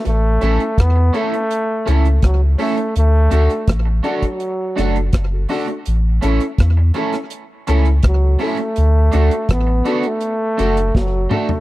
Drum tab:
HH |x-xxx-xxx-xxx-ox|x-xxx-xxx-xxx-ox|x-xxx-xxx-xxx-ox|x-xxx-xxx-xx----|
SD |----r-------r---|----r-----r-r---|----r--r--r-r---|----r-------o---|
T2 |----------------|----------------|----------------|--------------o-|
FT |----------------|----------------|----------------|---------------o|
BD |----o-------o---|----o--o----o---|----o-------o---|----o-------o---|